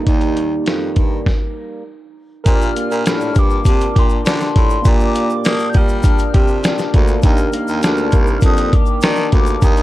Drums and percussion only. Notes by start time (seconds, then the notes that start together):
0.07 kick, closed hi-hat
0.21 closed hi-hat
0.37 closed hi-hat
0.66 snare, closed hi-hat
0.96 kick, closed hi-hat
1.26 kick, snare
2.46 kick, closed hi-hat, shaker
2.62 shaker
2.76 closed hi-hat, shaker
2.91 shaker
3.06 snare, closed hi-hat, shaker
3.21 shaker
3.35 kick, closed hi-hat, shaker
3.50 shaker
3.65 kick, closed hi-hat, shaker
3.81 closed hi-hat, shaker
3.96 kick, closed hi-hat
4.10 shaker
4.26 snare, closed hi-hat, shaker
4.40 snare, shaker
4.56 kick, closed hi-hat
4.70 shaker
4.85 kick, closed hi-hat, shaker
5.00 shaker
5.15 closed hi-hat, shaker
5.30 shaker
5.45 snare, closed hi-hat, shaker
5.59 shaker
5.73 kick, closed hi-hat, shaker
5.89 shaker
6.03 kick, closed hi-hat, shaker
6.18 closed hi-hat, shaker
6.34 kick, closed hi-hat
6.48 shaker
6.64 snare, closed hi-hat, shaker
6.78 snare, shaker
6.94 kick, closed hi-hat
7.07 shaker
7.22 kick, closed hi-hat, shaker
7.38 shaker
7.52 closed hi-hat, shaker
7.68 shaker
7.83 snare, closed hi-hat, shaker
7.97 shaker
8.12 kick, closed hi-hat, shaker
8.27 shaker
8.41 kick, closed hi-hat, shaker
8.57 closed hi-hat, shaker
8.73 kick, closed hi-hat
8.86 shaker
9.01 snare, closed hi-hat, shaker
9.16 snare, shaker
9.32 kick, closed hi-hat
9.46 shaker
9.62 kick, closed hi-hat, shaker
9.77 closed hi-hat, shaker